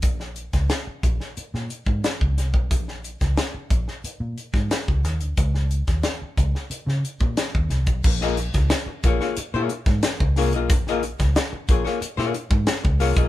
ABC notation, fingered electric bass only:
X:1
M:4/4
L:1/16
Q:1/4=90
K:Bbm
V:1 name="Fingered electric bass" clef=bass
B,,,3 D,, z2 B,,, z2 B,, z A,, z D,, C,, _C,, | B,,,3 D,, z2 B,,, z2 B,, z A,, z D,, E,, =D,, | ^C,,3 ^D,, z2 C,, z2 ^C, z ^A,, z D,, =C,, =B,,, | B,,,3 D,, z2 B,,, z2 B,, z A,, z D,, C,, _C,, |
B,,,3 D,, z2 B,,, z2 B,, z A,, z D,, C,, _C,, |]